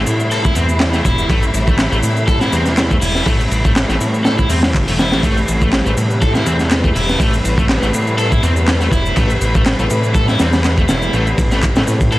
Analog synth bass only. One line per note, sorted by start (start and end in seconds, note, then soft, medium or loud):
0.07 0.53 A2 medium
0.56 1.02 E2 loud
1.05 1.26 E1 medium
1.30 1.50 A1 loud
1.54 1.89 A1 medium
1.92 2.02 A1 loud
2.03 2.49 A2 medium
2.53 2.99 E2 loud
3.02 3.23 E1 medium
3.26 3.47 A1 loud
3.51 3.85 A1 medium
3.89 3.99 A1 loud
4.01 4.47 A2 medium
4.50 4.74 E2 loud
4.75 4.89 G1 medium
4.88 5.14 E1 medium
5.13 5.22 A1 loud
5.23 5.44 A1 loud
5.48 5.82 A1 medium
5.86 5.95 A1 loud
5.97 6.43 A2 medium
6.47 6.92 E2 loud
6.96 7.16 E1 medium
7.20 7.41 A1 loud
7.45 7.79 A1 medium
7.83 7.92 A1 loud
7.94 8.40 A2 medium
8.43 8.89 E2 loud
8.91 9.12 E1 medium
9.17 9.37 A1 loud
9.41 9.75 A1 medium
9.79 9.89 A1 loud
9.91 10.37 A2 medium
10.40 10.86 E2 loud
10.89 11.10 E1 medium
11.14 11.34 A1 loud
11.38 11.72 A1 medium
11.76 11.85 A1 loud
11.88 12.19 A2 medium